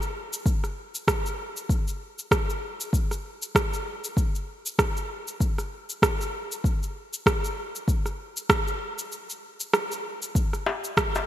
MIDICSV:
0, 0, Header, 1, 3, 480
1, 0, Start_track
1, 0, Tempo, 618557
1, 356, Time_signature, 4, 2, 24, 8
1, 8742, End_track
2, 0, Start_track
2, 0, Title_t, "Darbuka"
2, 8275, Note_on_c, 9, 62, 68
2, 8353, Note_off_c, 9, 62, 0
2, 8658, Note_on_c, 9, 62, 63
2, 8736, Note_off_c, 9, 62, 0
2, 8742, End_track
3, 0, Start_track
3, 0, Title_t, "Drums"
3, 17, Note_on_c, 9, 82, 33
3, 95, Note_off_c, 9, 82, 0
3, 258, Note_on_c, 9, 82, 66
3, 336, Note_off_c, 9, 82, 0
3, 355, Note_on_c, 9, 36, 101
3, 360, Note_on_c, 9, 82, 51
3, 432, Note_off_c, 9, 36, 0
3, 438, Note_off_c, 9, 82, 0
3, 495, Note_on_c, 9, 37, 28
3, 497, Note_on_c, 9, 82, 30
3, 572, Note_off_c, 9, 37, 0
3, 575, Note_off_c, 9, 82, 0
3, 737, Note_on_c, 9, 82, 60
3, 814, Note_off_c, 9, 82, 0
3, 835, Note_on_c, 9, 36, 96
3, 838, Note_on_c, 9, 37, 92
3, 840, Note_on_c, 9, 82, 56
3, 912, Note_off_c, 9, 36, 0
3, 915, Note_off_c, 9, 37, 0
3, 918, Note_off_c, 9, 82, 0
3, 979, Note_on_c, 9, 82, 31
3, 1056, Note_off_c, 9, 82, 0
3, 1217, Note_on_c, 9, 82, 63
3, 1294, Note_off_c, 9, 82, 0
3, 1315, Note_on_c, 9, 36, 98
3, 1322, Note_on_c, 9, 82, 50
3, 1392, Note_off_c, 9, 36, 0
3, 1400, Note_off_c, 9, 82, 0
3, 1457, Note_on_c, 9, 82, 32
3, 1535, Note_off_c, 9, 82, 0
3, 1698, Note_on_c, 9, 82, 62
3, 1775, Note_off_c, 9, 82, 0
3, 1794, Note_on_c, 9, 36, 101
3, 1798, Note_on_c, 9, 37, 86
3, 1800, Note_on_c, 9, 82, 51
3, 1872, Note_off_c, 9, 36, 0
3, 1875, Note_off_c, 9, 37, 0
3, 1878, Note_off_c, 9, 82, 0
3, 1939, Note_on_c, 9, 82, 32
3, 2016, Note_off_c, 9, 82, 0
3, 2177, Note_on_c, 9, 82, 64
3, 2255, Note_off_c, 9, 82, 0
3, 2273, Note_on_c, 9, 36, 97
3, 2282, Note_on_c, 9, 82, 50
3, 2351, Note_off_c, 9, 36, 0
3, 2360, Note_off_c, 9, 82, 0
3, 2415, Note_on_c, 9, 37, 26
3, 2418, Note_on_c, 9, 82, 31
3, 2493, Note_off_c, 9, 37, 0
3, 2496, Note_off_c, 9, 82, 0
3, 2657, Note_on_c, 9, 82, 59
3, 2735, Note_off_c, 9, 82, 0
3, 2754, Note_on_c, 9, 36, 94
3, 2760, Note_on_c, 9, 37, 93
3, 2763, Note_on_c, 9, 82, 56
3, 2832, Note_off_c, 9, 36, 0
3, 2838, Note_off_c, 9, 37, 0
3, 2840, Note_off_c, 9, 82, 0
3, 2899, Note_on_c, 9, 82, 32
3, 2976, Note_off_c, 9, 82, 0
3, 3137, Note_on_c, 9, 82, 65
3, 3215, Note_off_c, 9, 82, 0
3, 3234, Note_on_c, 9, 36, 103
3, 3242, Note_on_c, 9, 82, 48
3, 3312, Note_off_c, 9, 36, 0
3, 3320, Note_off_c, 9, 82, 0
3, 3377, Note_on_c, 9, 82, 32
3, 3455, Note_off_c, 9, 82, 0
3, 3616, Note_on_c, 9, 82, 57
3, 3694, Note_off_c, 9, 82, 0
3, 3714, Note_on_c, 9, 36, 91
3, 3716, Note_on_c, 9, 37, 85
3, 3719, Note_on_c, 9, 82, 48
3, 3792, Note_off_c, 9, 36, 0
3, 3794, Note_off_c, 9, 37, 0
3, 3797, Note_off_c, 9, 82, 0
3, 3855, Note_on_c, 9, 82, 31
3, 3933, Note_off_c, 9, 82, 0
3, 4095, Note_on_c, 9, 82, 63
3, 4172, Note_off_c, 9, 82, 0
3, 4194, Note_on_c, 9, 36, 90
3, 4199, Note_on_c, 9, 82, 52
3, 4272, Note_off_c, 9, 36, 0
3, 4277, Note_off_c, 9, 82, 0
3, 4333, Note_on_c, 9, 37, 30
3, 4336, Note_on_c, 9, 82, 31
3, 4411, Note_off_c, 9, 37, 0
3, 4414, Note_off_c, 9, 82, 0
3, 4577, Note_on_c, 9, 82, 60
3, 4655, Note_off_c, 9, 82, 0
3, 4674, Note_on_c, 9, 36, 90
3, 4679, Note_on_c, 9, 37, 95
3, 4681, Note_on_c, 9, 82, 52
3, 4751, Note_off_c, 9, 36, 0
3, 4756, Note_off_c, 9, 37, 0
3, 4759, Note_off_c, 9, 82, 0
3, 4820, Note_on_c, 9, 82, 32
3, 4898, Note_off_c, 9, 82, 0
3, 5059, Note_on_c, 9, 82, 57
3, 5136, Note_off_c, 9, 82, 0
3, 5154, Note_on_c, 9, 36, 97
3, 5163, Note_on_c, 9, 82, 49
3, 5232, Note_off_c, 9, 36, 0
3, 5240, Note_off_c, 9, 82, 0
3, 5300, Note_on_c, 9, 82, 30
3, 5377, Note_off_c, 9, 82, 0
3, 5537, Note_on_c, 9, 82, 57
3, 5615, Note_off_c, 9, 82, 0
3, 5634, Note_on_c, 9, 36, 96
3, 5639, Note_on_c, 9, 37, 89
3, 5642, Note_on_c, 9, 82, 47
3, 5711, Note_off_c, 9, 36, 0
3, 5717, Note_off_c, 9, 37, 0
3, 5719, Note_off_c, 9, 82, 0
3, 5778, Note_on_c, 9, 82, 32
3, 5855, Note_off_c, 9, 82, 0
3, 6018, Note_on_c, 9, 82, 60
3, 6096, Note_off_c, 9, 82, 0
3, 6113, Note_on_c, 9, 36, 98
3, 6119, Note_on_c, 9, 82, 52
3, 6190, Note_off_c, 9, 36, 0
3, 6197, Note_off_c, 9, 82, 0
3, 6252, Note_on_c, 9, 37, 30
3, 6255, Note_on_c, 9, 82, 32
3, 6330, Note_off_c, 9, 37, 0
3, 6332, Note_off_c, 9, 82, 0
3, 6495, Note_on_c, 9, 82, 61
3, 6572, Note_off_c, 9, 82, 0
3, 6592, Note_on_c, 9, 36, 99
3, 6593, Note_on_c, 9, 37, 100
3, 6596, Note_on_c, 9, 82, 53
3, 6670, Note_off_c, 9, 36, 0
3, 6671, Note_off_c, 9, 37, 0
3, 6674, Note_off_c, 9, 82, 0
3, 6733, Note_on_c, 9, 82, 32
3, 6811, Note_off_c, 9, 82, 0
3, 6974, Note_on_c, 9, 82, 61
3, 7052, Note_off_c, 9, 82, 0
3, 7078, Note_on_c, 9, 82, 51
3, 7155, Note_off_c, 9, 82, 0
3, 7216, Note_on_c, 9, 82, 32
3, 7293, Note_off_c, 9, 82, 0
3, 7452, Note_on_c, 9, 82, 60
3, 7530, Note_off_c, 9, 82, 0
3, 7555, Note_on_c, 9, 37, 93
3, 7557, Note_on_c, 9, 82, 48
3, 7632, Note_off_c, 9, 37, 0
3, 7635, Note_off_c, 9, 82, 0
3, 7696, Note_on_c, 9, 82, 31
3, 7773, Note_off_c, 9, 82, 0
3, 7934, Note_on_c, 9, 82, 63
3, 8012, Note_off_c, 9, 82, 0
3, 8033, Note_on_c, 9, 36, 101
3, 8038, Note_on_c, 9, 82, 54
3, 8111, Note_off_c, 9, 36, 0
3, 8116, Note_off_c, 9, 82, 0
3, 8174, Note_on_c, 9, 37, 31
3, 8176, Note_on_c, 9, 82, 31
3, 8252, Note_off_c, 9, 37, 0
3, 8254, Note_off_c, 9, 82, 0
3, 8415, Note_on_c, 9, 82, 61
3, 8493, Note_off_c, 9, 82, 0
3, 8513, Note_on_c, 9, 36, 100
3, 8516, Note_on_c, 9, 37, 106
3, 8519, Note_on_c, 9, 82, 52
3, 8591, Note_off_c, 9, 36, 0
3, 8594, Note_off_c, 9, 37, 0
3, 8596, Note_off_c, 9, 82, 0
3, 8653, Note_on_c, 9, 82, 33
3, 8730, Note_off_c, 9, 82, 0
3, 8742, End_track
0, 0, End_of_file